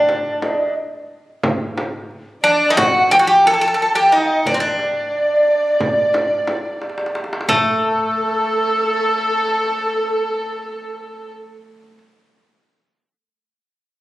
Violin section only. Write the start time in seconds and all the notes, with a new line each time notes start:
2.44 D5
2.70 G5
2.78 F#5
3.12 G5
3.45 A5
4.12 D#5
4.46 D5
4.61 D5
7.48 A4